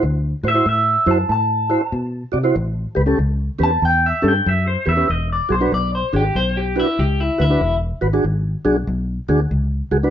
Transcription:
0.03 D2
0.43 A2 F#4 C5
0.48 E5
0.54 E4 F#4 C5
0.66 A2 E5
1.06 F#2 E4 F#4 C5
1.11 A5
1.29 A2 A5
1.70 E4 F#4 C5
1.92 B2
2.32 C3 F#4 D5
2.43 E4 F#4 C5
2.56 A1
2.95 C#2 G4 B4
3.06 C#4 G4 A4
3.19 C#2
3.59 E2 C#4 G4 B4
3.63 A5
3.82 E2 G5
4.06 E5
4.22 G2 C#4 G4 A4
4.28 G5
4.46 F#2 E5
4.67 C5
4.86 E2 G4 B4 E5
4.96 C#4 G4 B4
5.09 E1 D#5
5.33 D5
5.49 B1 F#4 G#4 C5
5.61 D4 F#4 B4
5.72 B1 D5
5.95 C5
6.13 G#1 D4 F#4 G4 G#4
6.35 B1 C5
6.57 G4
6.76 D4 E4 F#4 B4
6.99 C#2 G4
7.20 E4
7.38 D2 E4 F#4 B4
7.50 D4 F#4 B4
7.61 E1
8.01 G#1 F#4 B4
8.13 D4 F#4 G#4
8.24 G#1
8.65 B1 D4 F#4 G#4
8.87 B1
9.29 D2 D4 F#4 G#4
9.51 C#2
9.91 C#2 F#4 G#4
10.03 D4 F#4 B4

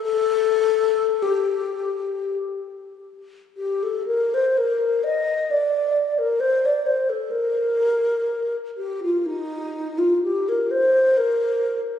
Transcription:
0.02 A4
1.22 G4
3.57 G4
3.83 A4
4.06 A#4
4.34 C5
4.57 A#4
5.03 D#5
5.50 D5
6.18 A#4
6.40 C5
6.65 D5
6.86 C5
7.09 A4
7.30 A#4
8.77 G4
9.03 F4
9.26 D#4
9.98 F4
10.23 G4
10.48 A#4
10.71 C5
11.17 A#4

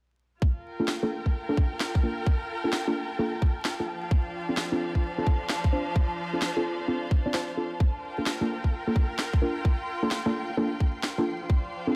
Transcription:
0.42 F4 A5, kick
0.62 A#4
0.71 G5
0.80 A#3 D4 F4 A4
0.88 snare
1.03 A#3 D4 F4 A4
1.26 kick
1.49 A#3 D4 F4 A4
1.57 kick
1.80 snare
1.95 kick
2.03 A#3 D4 F4 A#4
2.27 kick
2.64 A#3 D4 F4 A4
2.73 snare
2.87 A#3 D4 F4 A4
3.19 A#3 D4 F4 A4
3.42 kick
3.65 snare
3.80 A#3 D4 F4 A4
3.88 F3
3.98 F5
4.07 D4, kick
4.17 C5
4.49 C4 D4 F4 A4
4.57 snare
4.72 C4 D4 F4 A4
4.95 kick
5.18 C4 D4 F4 A4
5.27 kick
5.49 snare
5.64 kick
5.73 C4 D4 F4 C5
5.96 kick
6.33 C4 D4 F4 A4
6.42 snare
6.56 C4 D4 F4 A4
6.88 C4 D4 F4 A4
7.11 kick
7.26 C4 D4 F4 D5
7.34 C4 D4 F4 C5, snare
7.57 C4 D4 F4 A4
7.80 F4 C6, kick
7.98 A#4 G5
8.18 A#3 D4 F4 A4
8.26 snare
8.41 A#3 D4 F4 A4
8.64 kick
8.87 A#3 D4 F4 A4
8.96 kick
9.19 snare
9.33 kick
9.42 A#3 D4 F4 A#4
9.65 kick
10.03 A#3 D4 F4 A4
10.11 snare
10.26 A#3 D4 F4 A4
10.57 A#3 D4 F4 A4
10.80 kick
11.03 snare
11.18 A#3 D4 F4 A4
11.27 F3
11.44 D4 C5
11.50 F5, kick
11.87 C4 D4 F4 A4

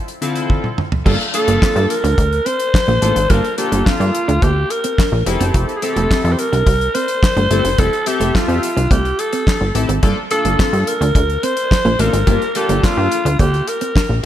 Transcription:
0.08 closed hi-hat
0.21 D3 C4 E4 F4 A4, closed hi-hat
0.36 closed hi-hat
0.50 kick, high tom
0.64 mid tom
0.78 mid tom
0.92 floor tom
1.06 G1 G3 A#3 D4 F4 A4, kick, crash
1.21 closed hi-hat
1.34 A#3 D4 F4 A4, muted clean electric guitar stroke, closed hi-hat
1.48 G1 A#3, closed hi-hat
1.62 G2 C4, kick, snare, clap
1.76 G2, muted clean electric guitar stroke, closed hi-hat
1.90 A#4, closed hi-hat
2.04 D2 D4, closed hi-hat
2.18 D2, kick, closed hi-hat
2.33 closed hi-hat
2.46 C4 C5, closed hi-hat
2.60 closed hi-hat
2.74 muted clean electric guitar stroke, kick, snare, clap
2.88 A#1 A#3, closed hi-hat
3.02 A1 A3 A#3 D4 F4 A4, closed hi-hat
3.16 G#1, closed hi-hat
3.30 G1 G3 A#3 D4 F4 A4 A#4, kick, closed hi-hat
3.45 closed hi-hat
3.58 A#3 D4 F4 G4 A4, muted clean electric guitar stroke, closed hi-hat
3.72 G1 A#3, closed hi-hat
3.86 G2 C4 F4, kick, snare, clap
4.00 G2, muted clean electric guitar stroke, closed hi-hat
4.15 closed hi-hat
4.28 D2 D4, closed hi-hat
4.42 D2 A#3 G4, kick, closed hi-hat
4.56 muted clean electric guitar stroke
4.70 A#4, closed hi-hat
4.84 C4, closed hi-hat
4.98 D4, kick, snare, clap
5.12 A#1
5.26 F1 C4 E4 G4 G#4, muted clean electric guitar stroke, closed hi-hat
5.33 A4
5.41 F#1 C4, closed hi-hat
5.54 F1 F4, kick, closed hi-hat
5.69 closed hi-hat
5.76 G#4
5.82 C4 E4 G4 A4, muted clean electric guitar stroke, closed hi-hat
5.96 F1 A3, closed hi-hat
6.11 C4, kick, snare, clap
6.24 F2, muted clean electric guitar stroke, closed hi-hat
6.32 C5
6.39 A#4, closed hi-hat
6.52 C2 D4, closed hi-hat
6.67 C2, kick, closed hi-hat
6.81 closed hi-hat
6.95 C4 C5, closed hi-hat
7.08 closed hi-hat
7.23 muted clean electric guitar stroke, kick, snare, clap
7.37 G1 A3, closed hi-hat
7.50 G1 A3 C4 E4 G4 A4, closed hi-hat
7.64 F#1, closed hi-hat
7.78 F1 G3 C4 E4 G4 A4, kick, closed hi-hat
7.93 closed hi-hat
8.06 C4 G4 A4 E5, muted clean electric guitar stroke, closed hi-hat
8.20 F1 A3, closed hi-hat
8.35 F2 C4 F4, kick, snare, clap
8.48 F2, muted clean electric guitar stroke, closed hi-hat
8.63 closed hi-hat
8.77 C2 D4, closed hi-hat
8.91 C2 A3 G4, kick, closed hi-hat
9.05 muted clean electric guitar stroke, closed hi-hat
9.19 A4, closed hi-hat
9.33 C4, closed hi-hat
9.47 D4, kick, snare, clap
9.61 G1
9.74 A1 C4 E4 G4 A4, muted clean electric guitar stroke, closed hi-hat
9.89 G#1 C4, closed hi-hat
10.02 G1 G3 A#3 D4 F4 A4, kick, closed hi-hat
10.31 A#3 D4 F4 A4, muted clean electric guitar stroke, closed hi-hat
10.45 G1 A#3, closed hi-hat
10.59 G2 C4, kick, snare, clap
10.73 G2, muted clean electric guitar stroke, closed hi-hat
10.87 A#4, closed hi-hat
11.01 D2 D4, closed hi-hat
11.15 D2, kick, closed hi-hat
11.30 closed hi-hat
11.43 C4 C5, closed hi-hat
11.57 closed hi-hat
11.71 muted clean electric guitar stroke, kick, snare, clap
11.85 A#1 A#3, closed hi-hat
11.99 A1 A3 A#3 D4 F4 A4 A#4, closed hi-hat
12.13 G#1, closed hi-hat
12.27 G1 G3 A#3 D4 F4 G4, kick, closed hi-hat
12.42 closed hi-hat
12.55 A#3 D4 F4 G4 A4, muted clean electric guitar stroke, closed hi-hat
12.69 G1 A#3, closed hi-hat
12.83 C4 F4, kick, snare, clap
12.97 G2, muted clean electric guitar stroke
13.12 closed hi-hat
13.25 D2 D4, closed hi-hat
13.39 D2 A#3 G4, kick, closed hi-hat
13.53 muted clean electric guitar stroke, closed hi-hat
13.68 A#4, closed hi-hat
13.81 C4, closed hi-hat
13.95 D4, kick, snare, clap
14.09 A#1

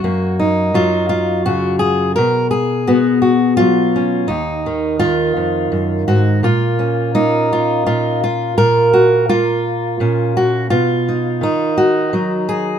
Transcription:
Already playing: F#3 F#4
0.04 F#2 A#3
0.39 D#4
0.74 F#3 F4
1.09 F4
1.46 C#3 F#4
1.79 G#4
2.16 B2 A#4
2.51 G#4
2.87 B3 F#4
3.22 F#4
3.57 F#3 F4
3.96 C#4
4.28 D#2 D#4
4.66 D#3
4.99 D#3 F4
5.37 F2
5.72 F#2
6.08 G#2 F#4
6.43 A#2 F4
6.79 C#4
7.15 A#3 D#4
7.53 F4
7.86 A#2 F4
8.24 F4
8.58 A#2 A#4
8.93 F#4
9.29 A#3 F4
10.00 A#2 C#4
10.37 F#4
10.70 B2 F4
11.09 D#4
11.41 D#3 D#4
11.78 F#4
12.13 F#3 D#4
12.49 G#4

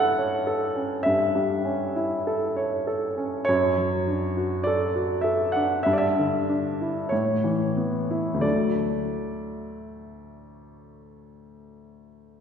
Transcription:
Already playing: G2 G3 C#4 E4 A4 F#5 G5
0.19 C#5
0.47 A4
0.76 C#4
1.03 G2 E5
1.35 G3
1.65 C#4
1.96 E4
2.27 A4
2.57 C#5
2.87 A4
3.17 C#4
3.45 F#2 C#5
3.78 F#3
4.08 D4
4.37 F#4
4.64 A4 D5
4.95 F#4
5.21 A4 E5
5.52 D4 F#5
5.83 G2 E5
5.93 D5
5.98 E5
6.19 D3
6.49 D4
6.81 E4
7.09 A2 C#5
7.44 E3
7.77 B3
8.11 E4
8.34 D2
8.41 F#3 A3 D4 D5

